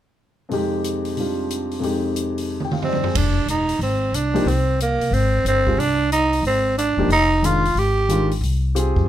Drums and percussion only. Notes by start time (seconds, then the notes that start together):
0.51 open hi-hat
0.84 closed hi-hat
1.05 open hi-hat
1.17 open hi-hat
1.50 closed hi-hat
1.71 open hi-hat
1.83 open hi-hat
2.16 closed hi-hat
2.38 open hi-hat
2.60 mid tom
2.71 mid tom
2.82 floor tom
2.92 floor tom
3.03 floor tom
3.15 kick, ride
3.48 closed hi-hat
3.69 open hi-hat
3.81 open hi-hat
4.14 closed hi-hat
4.35 open hi-hat
4.48 open hi-hat
4.80 closed hi-hat
5.01 open hi-hat
5.14 open hi-hat
5.46 closed hi-hat
5.67 kick
5.80 open hi-hat
6.12 closed hi-hat
6.33 open hi-hat
6.45 open hi-hat
6.78 closed hi-hat
7.10 open hi-hat
7.44 closed hi-hat
7.65 open hi-hat
7.77 open hi-hat
8.09 closed hi-hat
8.31 open hi-hat
8.43 open hi-hat
8.76 closed hi-hat
8.96 kick